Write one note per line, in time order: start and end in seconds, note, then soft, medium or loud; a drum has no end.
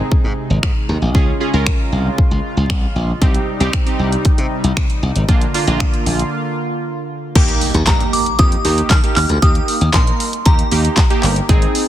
0.00 1.13 C3 medium
0.00 3.18 G#3 medium
0.00 0.43 C4 medium
0.00 0.43 D#4 medium
0.00 1.13 D#4 medium
0.00 0.43 G#4 medium
0.12 muted slap bass stroke soft
0.12 kick loud
0.24 0.32 G#2 medium
0.50 0.58 G#1 medium
0.63 0.71 G#2 loud
0.63 finger snap loud
0.63 kick loud
0.89 0.97 D#2 medium
1.02 1.10 A#1 medium
1.15 1.30 C#2 medium
1.15 3.20 C#3 medium
1.15 1.32 C#4 medium
1.15 1.32 F4 medium
1.15 3.20 F4 medium
1.15 1.33 G#4 loud
1.15 kick loud
1.40 1.49 C#4 medium
1.40 1.49 F4 medium
1.40 1.50 G#4 medium
1.53 1.69 C#2 medium
1.53 2.24 C#4 medium
1.53 2.24 F4 medium
1.53 2.24 A#4 medium
1.67 finger snap loud
1.67 kick loud
1.92 2.08 C2 medium
2.18 kick loud
2.31 2.39 C#2 medium
2.57 2.65 C#2 medium
2.70 finger snap loud
2.70 kick loud
2.96 3.11 A#1 loud
3.21 3.37 C2 loud
3.21 5.27 C3 medium
3.21 5.27 G3 medium
3.21 3.48 C4 medium
3.21 3.48 D#4 medium
3.21 5.27 D#4 medium
3.21 3.48 G4 loud
3.21 kick loud
3.21 closed hi-hat medium
3.34 closed hi-hat medium
3.60 3.68 C2 loud
3.60 3.78 C4 medium
3.60 3.78 D#4 medium
3.60 3.78 G4 loud
3.60 closed hi-hat soft
3.73 finger snap loud
3.73 kick loud
3.73 closed hi-hat medium
3.86 4.57 C4 medium
3.86 4.57 D#4 medium
3.86 4.57 G4 medium
3.86 closed hi-hat medium
3.99 4.15 C2 medium
4.12 closed hi-hat medium
4.25 muted slap bass stroke soft
4.25 kick loud
4.25 closed hi-hat medium
4.38 4.46 C3 loud
4.38 closed hi-hat medium
4.64 4.72 C2 medium
4.64 closed hi-hat medium
4.77 4.85 C3 medium
4.77 finger snap loud
4.77 kick loud
4.77 closed hi-hat medium
4.90 closed hi-hat medium
5.03 5.10 C2 loud
5.16 5.23 G#1 medium
5.16 closed hi-hat medium
5.28 5.44 A#1 loud
5.28 7.33 D3 medium
5.28 5.46 A#3 medium
5.28 7.33 A#3 medium
5.28 5.46 D4 medium
5.28 7.33 F4 medium
5.28 5.46 F4 medium
5.28 kick loud
5.28 closed hi-hat medium
5.41 closed hi-hat soft
5.54 5.63 A#3 medium
5.54 5.63 D4 medium
5.54 5.63 F4 medium
5.54 open hi-hat medium
5.67 5.83 A#1 loud
5.67 6.38 A#3 medium
5.67 6.38 D4 medium
5.67 6.38 F4 loud
5.67 closed hi-hat medium
5.80 finger snap loud
5.80 kick loud
5.80 closed hi-hat medium
5.94 closed hi-hat medium
6.06 6.22 A#1 medium
6.06 open hi-hat medium
6.19 closed hi-hat medium
7.35 7.51 D#2 loud
7.35 7.71 A#3 medium
7.35 7.71 D#4 medium
7.35 7.71 G4 loud
7.35 kick loud
7.35 closed hi-hat medium
7.35 crash loud
7.35 impact medium
7.48 closed hi-hat soft
7.61 open hi-hat medium
7.74 7.82 D#2 medium
7.74 closed hi-hat soft
7.86 8.22 A#3 medium
7.86 8.22 D#4 medium
7.86 8.23 G4 medium
7.86 8.14 A#5 medium
7.86 kick loud
7.86 snare medium
7.86 clap loud
7.86 closed hi-hat medium
8.00 closed hi-hat medium
8.13 8.40 D6 medium
8.13 open hi-hat medium
8.26 closed hi-hat medium
8.39 8.55 F2 loud
8.39 8.56 A#3 medium
8.39 8.57 D#4 medium
8.39 8.57 G4 medium
8.39 8.92 D#6 loud
8.39 kick loud
8.39 closed hi-hat medium
8.52 closed hi-hat medium
8.64 8.80 D#2 loud
8.64 8.91 A#3 medium
8.64 8.91 D#4 medium
8.64 8.91 G4 medium
8.64 open hi-hat medium
8.78 closed hi-hat medium
8.90 8.98 D#3 loud
8.90 9.15 F6 loud
8.90 kick loud
8.90 snare loud
8.90 clap loud
8.90 closed hi-hat medium
9.03 9.30 A#3 medium
9.03 9.30 D#4 medium
9.03 9.30 G4 medium
9.03 closed hi-hat medium
9.16 9.24 D#2 medium
9.16 9.28 F6 loud
9.16 clap medium
9.16 open hi-hat medium
9.29 9.37 D2 medium
9.29 closed hi-hat medium
9.42 9.58 D#2 loud
9.42 9.77 A#3 medium
9.42 9.78 D#4 medium
9.42 9.78 G4 medium
9.42 9.96 D#6 loud
9.42 kick loud
9.42 closed hi-hat medium
9.55 closed hi-hat soft
9.68 open hi-hat medium
9.81 9.89 D#2 loud
9.81 closed hi-hat medium
9.93 10.10 A#1 loud
9.93 10.29 A#3 medium
9.93 10.29 D#4 medium
9.93 10.29 A#4 medium
9.93 10.47 C6 medium
9.93 kick loud
9.93 snare medium
9.93 clap loud
9.93 closed hi-hat medium
10.07 closed hi-hat medium
10.20 open hi-hat medium
10.33 closed hi-hat medium
10.46 10.61 D#2 medium
10.46 10.63 A#3 medium
10.46 10.63 D#4 medium
10.46 10.64 G4 medium
10.46 11.19 A#5 medium
10.46 kick loud
10.46 closed hi-hat medium
10.59 closed hi-hat medium
10.71 10.87 D#2 medium
10.71 10.98 A#3 medium
10.71 10.98 D#4 medium
10.71 10.98 G4 medium
10.71 open hi-hat medium
10.85 closed hi-hat medium
10.97 kick loud
10.97 snare loud
10.97 clap loud
10.97 closed hi-hat medium
11.10 11.37 A#3 medium
11.10 11.37 D#4 medium
11.10 11.37 G4 loud
11.10 closed hi-hat medium
11.23 11.39 G1 medium
11.23 clap medium
11.23 open hi-hat medium
11.36 closed hi-hat medium
11.49 11.65 G#1 loud
11.49 11.84 C4 medium
11.49 11.84 D#4 medium
11.49 11.85 G#4 loud
11.49 kick loud
11.49 closed hi-hat medium
11.62 closed hi-hat soft
11.75 open hi-hat medium